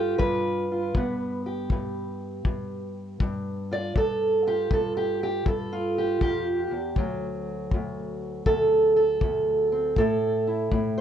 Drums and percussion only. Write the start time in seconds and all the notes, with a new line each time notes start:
0.20 kick
0.95 kick
1.70 kick
2.45 kick
3.20 kick
3.95 kick
4.71 kick
5.46 kick
6.21 kick
6.96 kick
7.71 kick
8.46 kick
9.21 kick
9.96 kick
10.72 kick